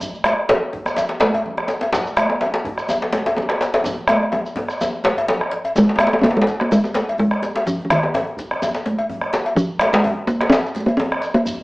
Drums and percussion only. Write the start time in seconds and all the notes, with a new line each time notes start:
0.00 bombo rim, bombo low, low conga, djembe bass, shekere
0.13 high conga, shekere
0.24 bombo rim, cowbell, djembe slap, high conga
0.49 cowbell, djembe slap, djembe tone, low conga
0.73 bombo low, djembe slap, high conga, djembe bass
0.86 bombo rim, djembe slap, djembe tone, high conga, shekere
0.96 cowbell, djembe slap, low conga, shekere
1.09 djembe slap
1.20 bombo rim, djembe slap, djembe tone, high conga
1.34 bombo rim, bombo low, cowbell, djembe bass
1.45 djembe slap, low conga
1.57 bombo rim, djembe tone
1.68 djembe slap, shekere
1.81 cowbell, djembe slap, djembe tone
1.93 bombo rim, bombo low, djembe slap, djembe bass, low conga, shekere
2.07 high conga, shekere
2.17 bombo rim, cowbell, djembe slap, high conga
2.30 djembe tone
2.41 cowbell, djembe slap, djembe tone, low conga
2.54 djembe slap
2.65 bombo low, djembe slap, high conga, djembe bass
2.78 bombo rim, djembe slap, high conga, shekere
2.89 cowbell, djembe tone, low conga, shekere
3.02 djembe slap
3.13 bombo rim, djembe slap, djembe tone, high conga
3.26 bombo rim, bombo low, cowbell, djembe slap, djembe bass
3.37 djembe slap, djembe tone, low conga
3.49 bombo rim, djembe slap
3.61 djembe slap, shekere
3.74 cowbell, djembe slap, djembe tone
3.84 bombo low, djembe tone, high conga, djembe bass, low conga, shekere
3.99 djembe slap
4.08 bombo rim, cowbell, djembe slap, djembe tone, high conga
4.22 djembe slap
4.32 cowbell, djembe tone, low conga
4.46 shekere
4.56 bombo low, djembe slap, djembe tone, high conga, djembe bass
4.68 bombo rim, shekere
4.80 bombo rim, cowbell, high conga, djembe tone, low conga, shekere
5.04 djembe slap, djembe tone, high conga
5.17 bombo rim, bombo low, cowbell, djembe slap, djembe bass
5.28 djembe slap, low conga, shekere
5.41 bombo rim
5.51 bombo rim, djembe slap
5.64 cowbell, djembe tone
5.76 bombo low, djembe slap, djembe tone, high conga, djembe bass, low conga, shekere
5.83 djembe tone
5.88 djembe slap, djembe tone, high conga
5.96 bombo rim, djembe slap, djembe tone
6.00 cowbell, high conga, djembe tone
6.07 djembe slap
6.12 bombo rim, djembe tone
6.19 djembe tone
6.24 cowbell, djembe slap, djembe tone, low conga, djembe bass
6.31 djembe tone
6.37 djembe tone
6.42 djembe slap
6.47 bombo low, djembe slap, shekere
6.60 bombo rim, djembe tone
6.71 cowbell, djembe bass, low conga, shekere
6.84 djembe tone, shekere
6.94 djembe slap, djembe tone, high conga, shekere
7.08 bombo low, cowbell
7.18 low conga, djembe bass
7.31 bombo rim, djembe slap, djembe tone, high conga
7.42 djembe slap, djembe tone, shekere
7.56 cowbell, djembe slap, high conga
7.66 bombo low, djembe slap, high conga, low conga, djembe bass, shekere
7.80 djembe slap, djembe tone, high conga
7.90 bombo rim, cowbell, djembe slap, high conga
8.03 bombo rim, djembe tone
8.14 cowbell, djembe slap, djembe tone, djembe bass, low conga
8.37 bombo low, djembe slap, shekere
8.51 bombo rim, djembe tone
8.62 cowbell, djembe tone, low conga, djembe bass, shekere
8.75 djembe slap, shekere
8.85 djembe slap, high conga, djembe tone
8.98 bombo low, cowbell
9.09 djembe bass, low conga
9.21 bombo rim, djembe slap, djembe tone, high conga
9.33 djembe slap, shekere
9.46 cowbell, djembe slap, high conga
9.55 bombo low, djembe slap, high conga, djembe bass, low conga, shekere
9.70 high conga
9.79 bombo rim, cowbell, djembe slap, high conga
9.93 bombo rim, djembe slap
10.04 cowbell, djembe tone, djembe bass, low conga
10.27 bombo low, djembe slap, shekere
10.40 bombo rim, djembe slap, djembe tone
10.51 cowbell, djembe slap, djembe bass, low conga, shekere
10.66 shekere
10.75 djembe slap, djembe tone, high conga, shekere
10.88 bombo low, cowbell
10.98 djembe slap, djembe bass, low conga
11.11 bombo rim, djembe slap, djembe tone, high conga
11.22 djembe slap, shekere
11.34 cowbell, djembe slap, high conga
11.45 bombo rim, bombo low, djembe bass, low conga, shekere
11.58 djembe tone, high conga